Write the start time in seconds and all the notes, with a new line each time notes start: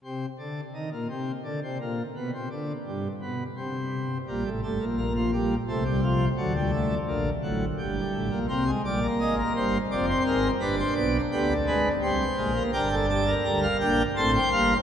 0.04 C3
0.39 D3
0.74 D#3
0.92 A#2
1.10 C3
1.45 D3
1.63 C3
1.81 A#2
2.16 B2
2.34 C3
2.51 D3
2.86 G2
3.22 B2
3.57 C3
4.28 A#1 A#2 G3
4.46 A1 A2
4.62 G1 G2 A3
4.80 A#1 A#2
4.98 A#3
5.16 F3
5.33 G3
5.68 C2 C3 A3
5.85 G3
6.03 F3
6.37 D2 D3 F#3
6.56 G3
6.73 A3
7.08 A#1 A#2 D3
7.43 A1 A2 F#3
7.78 G1 G2 G3
8.14 A1 A2
8.30 A#1 A#2
8.49 C2 C3 A#3 C5
8.67 G#3
8.85 A#1 A#2 G3 D5
9.02 A#3
9.20 G#1 G#2 D#5
9.38 A#4
9.56 G1 G2 C5
9.91 F1 F2 C4 D5
10.08 C5
10.26 G#1 G#2 A#4
10.60 G1 G2 D4 B4
10.79 C5
10.95 B1 B2 D5
11.32 D2 D3 B3 G4
11.67 G#3 B4
12.02 C2 C3 G3 C5
12.37 A#1 A#2 G#3
12.56 A#3
12.73 G1 G2 D4 A#4 G5
12.91 A4
13.09 G4 A5
13.27 A#4
13.44 D2 D3 G3 A#5
13.62 F5
13.80 A#1 A#2 D4 G5
14.16 A1 A2 C4 C5 A5
14.35 G5
14.52 G1 G2 A#3 F5